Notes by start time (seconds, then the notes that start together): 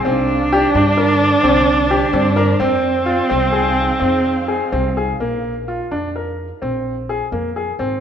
0.05 C2 D3 C4 D4 C5 D5
0.52 G4
0.75 G2 D4
0.97 A#4
1.43 C2 C4
1.91 G4
2.13 G2 C4
2.36 A#4
2.60 F2 C4 D#4 G#4 F5
3.06 F4
3.29 C2 C4
3.52 G#4
4.00 F2 C4
4.48 G#4
4.72 C2 C4
4.97 G#4
5.20 A#1 A#3
5.68 F4
5.91 F2 D4
6.16 A#4
6.62 A#1 C4
7.09 G#4
7.32 F2 A#3
7.56 G#4
7.79 G#1 C4